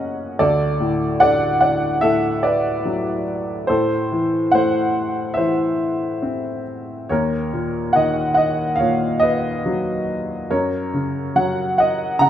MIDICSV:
0, 0, Header, 1, 2, 480
1, 0, Start_track
1, 0, Tempo, 821918
1, 230, Time_signature, 4, 2, 24, 8
1, 1668, Tempo, 839161
1, 3108, Tempo, 853485
1, 7001, End_track
2, 0, Start_track
2, 0, Title_t, "Upright piano"
2, 0, Program_c, 0, 0
2, 0, Control_c, 0, 64, 127
2, 0, Note_on_c, 0, 42, 49
2, 0, Note_on_c, 0, 49, 41
2, 0, Note_on_c, 0, 61, 43
2, 0, Note_on_c, 0, 73, 53
2, 0, Note_on_c, 0, 75, 52
2, 0, Note_on_c, 0, 78, 62
2, 0, Note_on_c, 0, 80, 58
2, 201, Note_off_c, 0, 42, 0
2, 208, Note_off_c, 0, 49, 0
2, 215, Note_off_c, 0, 61, 0
2, 229, Note_on_c, 0, 69, 53
2, 229, Note_on_c, 0, 74, 76
2, 232, Note_on_c, 0, 38, 50
2, 237, Note_off_c, 0, 73, 0
2, 237, Control_c, 0, 64, 0
2, 238, Note_off_c, 0, 80, 0
2, 241, Note_off_c, 0, 75, 0
2, 242, Note_off_c, 0, 78, 0
2, 325, Control_c, 0, 64, 127
2, 468, Note_on_c, 0, 45, 40
2, 684, Note_off_c, 0, 69, 0
2, 699, Note_off_c, 0, 74, 0
2, 701, Note_on_c, 0, 78, 81
2, 707, Note_on_c, 0, 74, 65
2, 708, Note_on_c, 0, 50, 42
2, 926, Note_off_c, 0, 78, 0
2, 930, Note_off_c, 0, 74, 0
2, 937, Note_on_c, 0, 78, 69
2, 947, Note_on_c, 0, 74, 53
2, 1168, Note_off_c, 0, 74, 0
2, 1175, Note_off_c, 0, 45, 0
2, 1175, Note_on_c, 0, 76, 73
2, 1183, Note_on_c, 0, 45, 44
2, 1184, Note_on_c, 0, 69, 54
2, 1188, Note_off_c, 0, 78, 0
2, 1407, Note_off_c, 0, 69, 0
2, 1419, Note_on_c, 0, 74, 61
2, 1427, Note_off_c, 0, 76, 0
2, 1429, Note_on_c, 0, 71, 42
2, 1645, Note_off_c, 0, 50, 0
2, 1667, Note_on_c, 0, 54, 41
2, 1882, Note_off_c, 0, 74, 0
2, 1887, Note_off_c, 0, 71, 0
2, 2125, Note_off_c, 0, 45, 0
2, 2127, Note_off_c, 0, 38, 0
2, 2134, Note_off_c, 0, 54, 0
2, 2135, Note_on_c, 0, 72, 64
2, 2147, Note_on_c, 0, 69, 48
2, 2149, Note_on_c, 0, 45, 49
2, 2156, Control_c, 0, 64, 0
2, 2244, Control_c, 0, 64, 127
2, 2390, Note_on_c, 0, 52, 39
2, 2605, Note_off_c, 0, 69, 0
2, 2617, Note_on_c, 0, 78, 70
2, 2627, Note_off_c, 0, 72, 0
2, 2628, Note_on_c, 0, 57, 40
2, 2636, Note_on_c, 0, 72, 59
2, 3087, Note_on_c, 0, 76, 60
2, 3089, Note_off_c, 0, 72, 0
2, 3102, Note_off_c, 0, 52, 0
2, 3107, Note_on_c, 0, 72, 48
2, 3111, Note_on_c, 0, 52, 41
2, 3117, Note_off_c, 0, 78, 0
2, 3566, Note_off_c, 0, 57, 0
2, 3586, Note_on_c, 0, 60, 38
2, 3802, Note_off_c, 0, 76, 0
2, 3811, Note_off_c, 0, 72, 0
2, 4056, Note_off_c, 0, 45, 0
2, 4057, Note_off_c, 0, 52, 0
2, 4062, Note_off_c, 0, 60, 0
2, 4076, Note_on_c, 0, 73, 61
2, 4080, Note_on_c, 0, 39, 50
2, 4085, Control_c, 0, 64, 0
2, 4089, Note_on_c, 0, 70, 48
2, 4197, Control_c, 0, 64, 127
2, 4321, Note_on_c, 0, 46, 37
2, 4541, Note_off_c, 0, 70, 0
2, 4544, Note_on_c, 0, 78, 70
2, 4560, Note_on_c, 0, 51, 42
2, 4561, Note_on_c, 0, 75, 52
2, 4572, Note_off_c, 0, 73, 0
2, 4770, Note_off_c, 0, 78, 0
2, 4778, Note_on_c, 0, 78, 66
2, 4781, Note_off_c, 0, 75, 0
2, 4794, Note_on_c, 0, 75, 56
2, 5011, Note_on_c, 0, 77, 70
2, 5018, Note_off_c, 0, 75, 0
2, 5028, Note_off_c, 0, 46, 0
2, 5030, Note_on_c, 0, 73, 54
2, 5035, Note_off_c, 0, 78, 0
2, 5037, Note_on_c, 0, 46, 42
2, 5247, Note_off_c, 0, 77, 0
2, 5257, Note_off_c, 0, 73, 0
2, 5258, Note_on_c, 0, 75, 73
2, 5276, Note_on_c, 0, 71, 43
2, 5497, Note_off_c, 0, 51, 0
2, 5517, Note_on_c, 0, 54, 40
2, 5727, Note_off_c, 0, 75, 0
2, 5736, Note_off_c, 0, 71, 0
2, 5976, Note_off_c, 0, 46, 0
2, 5977, Note_off_c, 0, 39, 0
2, 5983, Note_off_c, 0, 54, 0
2, 5993, Note_on_c, 0, 70, 46
2, 5995, Note_on_c, 0, 73, 66
2, 5997, Note_on_c, 0, 42, 48
2, 6006, Control_c, 0, 64, 0
2, 6094, Control_c, 0, 64, 127
2, 6237, Note_on_c, 0, 49, 37
2, 6452, Note_off_c, 0, 70, 0
2, 6472, Note_off_c, 0, 73, 0
2, 6473, Note_on_c, 0, 54, 42
2, 6474, Note_on_c, 0, 78, 64
2, 6480, Note_on_c, 0, 73, 50
2, 6701, Note_off_c, 0, 73, 0
2, 6704, Note_off_c, 0, 78, 0
2, 6712, Note_on_c, 0, 78, 66
2, 6722, Note_on_c, 0, 75, 54
2, 6934, Note_off_c, 0, 49, 0
2, 6938, Note_off_c, 0, 75, 0
2, 6943, Note_on_c, 0, 49, 44
2, 6943, Note_on_c, 0, 82, 83
2, 6948, Note_off_c, 0, 78, 0
2, 6956, Note_on_c, 0, 78, 63
2, 7001, Note_off_c, 0, 42, 0
2, 7001, Note_off_c, 0, 49, 0
2, 7001, Note_off_c, 0, 54, 0
2, 7001, Note_off_c, 0, 78, 0
2, 7001, Note_off_c, 0, 82, 0
2, 7001, End_track
0, 0, End_of_file